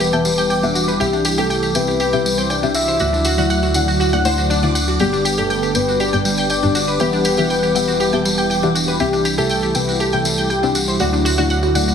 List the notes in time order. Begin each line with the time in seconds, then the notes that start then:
Already playing: E1 E3 G3 B3 G4 F#5 D6
0.00 G4 B4, tambourine
0.13 E3 B3 G4 E5 G5 A5, tambourine
0.25 G3, tambourine
0.38 G5, tambourine
0.50 G5, tambourine
0.63 E3 B3 D4 G4 E5 F#5, tambourine
0.75 F#4, tambourine
0.88 B4, tambourine
1.00 C2 C3 C4 E4 G4 E5 G5, tambourine
1.13 D4, tambourine
1.25 G4, tambourine
1.38 C3 C4 G4 A4 E5 G5, tambourine
1.50 G5, tambourine
1.63 G4, tambourine
1.75 C3 C4 G4 B4 E5 G5, tambourine
1.87 G4, tambourine
2.00 G4 B4, tambourine
2.13 C3 C4 G4 E5 G5, tambourine
2.25 G3, tambourine
2.38 C5 G5, tambourine
2.50 D5 G5, tambourine
2.63 C3 C4 D4 G4 E5 G5, tambourine
2.74 F#4 E5, tambourine
2.88 C5, tambourine
2.99 D2 D3 F#3 A3 E4 F#4 D5 F#5, tambourine
3.13 D4, tambourine
3.25 F#4, tambourine
3.38 D3 A3 E4 F#4 D5 F#5, tambourine
3.50 F#5, tambourine
3.63 F#4, tambourine
3.74 D3 A3 E4 D5 F#5, tambourine
3.88 F#4, tambourine
4.00 F#4, tambourine
4.13 D3 A3 E4 D5 F#5, tambourine
4.25 D3 A3 E4 C5 D5 F#5, tambourine
4.38 F#4, tambourine
4.50 D4, tambourine
4.63 D3 A3 E4 D5 F#5, tambourine
4.75 F#5, tambourine
4.88 F#4, tambourine
4.99 G1 G2 G3 B3 G4 B4 D5 G5, tambourine
5.13 D4, tambourine
5.25 G4, tambourine
5.38 G2 B3 G4 A4 D5 G5, tambourine
5.50 G5, tambourine
5.63 G4, tambourine
5.75 G2 B3 G4 B4 D5 G5, tambourine
5.88 F#4, tambourine
6.00 G4 D5, tambourine
6.13 G2 B3 G4 D5 G5, tambourine
6.25 G3, tambourine
6.38 G5, tambourine
6.50 D5 G5, tambourine
6.63 G2 B3 D4 G4 D5 G5, tambourine
6.75 F#4, tambourine
6.88 B4, tambourine
7.00 E1 E3 B3 G4 B4 E5 F#5, tambourine
7.13 D4, tambourine
7.25 G4, tambourine
7.37 E3 B3 G4 E5 F#5, tambourine
7.50 B4 G5, tambourine
7.63 G4, tambourine
7.75 E3 B3 G4 E5 F#5 G5, tambourine
7.88 F#4, tambourine
8.00 G4, tambourine
8.13 E3 B3 G4 E5 G5 A5, tambourine
8.25 G3, tambourine
8.38 G5, tambourine
8.50 G5, tambourine
8.63 E3 B3 D4 G4 E5 F#5, tambourine
8.75 F#4, tambourine
8.88 B4, tambourine
9.00 C2 C3 G3 C4 E4 G4 E5 G5, tambourine
9.13 D4, tambourine
9.25 G4, tambourine
9.38 C3 C4 G4 A4 E5 G5, tambourine
9.49 G5, tambourine
9.63 G4, tambourine
9.75 C3 C4 G4 B4 E5 G5, tambourine
9.88 F#4, tambourine
10.00 G4 A4, tambourine
10.12 C3 C4 G4 E5 G5, tambourine
10.25 G3, tambourine
10.37 G5, tambourine
10.50 G4 G5, tambourine
10.63 C3 C4 D4 G4 E5 G5, tambourine
10.75 F#4, tambourine
10.88 C5, tambourine
11.00 D2 D3 F#3 A3 E4 F#4 D5 F#5, tambourine
11.13 D4, tambourine
11.25 F#4, tambourine
11.38 D3 A3 E4 F#4 D5 F#5, tambourine
11.50 F#5, tambourine
11.63 F#4, tambourine
11.75 D3 A3 E4 D5 F#5, tambourine
11.88 F#4, tambourine